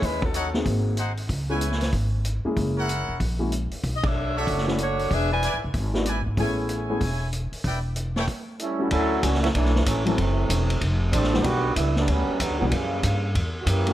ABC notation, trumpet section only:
X:1
M:4/4
L:1/8
Q:"Swing" 1/4=189
K:A
V:1 name="Trumpet section"
z2 [^DAcf] z3 [DG^Bf] z | z [EBcg]3 z4 | z [E^Acf]3 z4 | z3 [DAce]3 z2 |
z2 [EBdg] z3 [EBdg] z | [Ecg]4- [Ecg] z3 | [EBd=g] z2 [EAcg] z4 | [K:D] z8 |
z8 | z8 | z8 |]